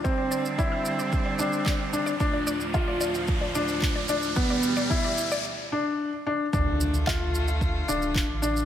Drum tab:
SH |x-xxx-xxx-xxx-xx|x-xxx-xxx-xxx-xx|x-xxx-xx--------|x-xxx-xxx-xxx-xx|
CP |------------x---|------------x---|----------------|----x-------x---|
BD |o---o---o---o---|o---o---o---o---|o---o-----------|o---o---o---o---|